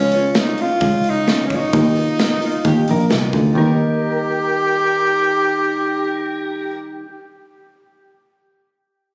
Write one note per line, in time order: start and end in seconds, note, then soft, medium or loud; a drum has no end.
0.00 0.38 C#2 medium
0.00 0.13 C#3 medium
0.00 0.13 F3 medium
0.00 0.13 G#3 medium
0.00 0.14 C#4 medium
0.00 0.34 C#4 medium
0.00 0.13 F4 medium
0.00 0.12 C#5 medium
0.12 0.36 C#4 soft
0.12 0.36 F4 soft
0.12 0.36 C#5 soft
0.12 open hi-hat soft
0.16 0.35 G#3 soft
0.35 0.59 G#3 soft
0.35 0.58 C#4 medium
0.35 0.58 F4 medium
0.35 0.57 C#5 medium
0.35 snare loud
0.35 open hi-hat medium
0.39 0.63 D#4 medium
0.58 1.26 G#3 soft
0.58 1.26 C#4 soft
0.58 1.27 F4 soft
0.58 1.11 F4 medium
0.58 1.27 C#5 soft
0.58 open hi-hat soft
0.80 1.52 C#2 medium
0.80 kick loud
0.80 open hi-hat medium
1.04 open hi-hat soft
1.09 1.46 D#4 loud
1.27 1.50 G#3 medium
1.27 1.50 C#4 medium
1.27 1.50 F4 medium
1.27 1.51 C#5 medium
1.27 snare medium
1.27 open hi-hat soft
1.47 1.57 C#4 medium
1.47 kick medium
1.47 open hi-hat soft
1.52 1.72 G#3 soft
1.52 1.72 C#4 soft
1.52 3.13 D#4 loud
1.52 1.72 F4 soft
1.52 1.74 C#5 medium
1.73 2.44 D#2 medium
1.73 1.96 D#3 medium
1.73 1.96 A#3 medium
1.73 1.95 D#4 medium
1.73 1.95 F4 medium
1.73 1.94 A#4 medium
1.73 kick loud
1.73 open hi-hat medium
1.95 2.17 D#4 soft
1.95 2.18 F4 soft
1.95 2.18 A#4 soft
1.95 open hi-hat soft
2.18 2.41 A#3 medium
2.18 2.40 D#4 medium
2.18 2.38 F4 medium
2.18 2.38 A#4 medium
2.18 snare loud
2.18 open hi-hat medium
2.23 2.43 D#4 medium
2.39 3.08 D#4 soft
2.39 3.09 F4 soft
2.39 3.09 A#4 soft
2.39 open hi-hat soft
2.46 2.66 F4 medium
2.65 2.83 D#2 medium
2.65 2.88 G4 medium
2.65 kick medium
2.65 open hi-hat medium
2.88 3.09 A#1 medium
2.88 3.11 A#4 medium
2.88 open hi-hat soft
3.09 3.32 C2 medium
3.09 3.33 A#3 soft
3.09 3.33 D#4 medium
3.09 3.33 F4 soft
3.09 3.31 A#4 medium
3.09 snare loud
3.09 open hi-hat medium
3.32 3.54 D2 medium
3.32 3.57 D#4 soft
3.32 3.56 F4 soft
3.32 3.55 A#4 soft
3.32 kick medium
3.32 open hi-hat soft
3.52 6.75 D#2 medium
3.52 7.02 D#3 medium
3.52 7.06 G3 medium
3.56 7.08 D#4 medium
3.56 6.77 G4 medium
3.56 7.10 G4 medium
3.56 6.78 A#4 medium
3.61 7.11 A#4 medium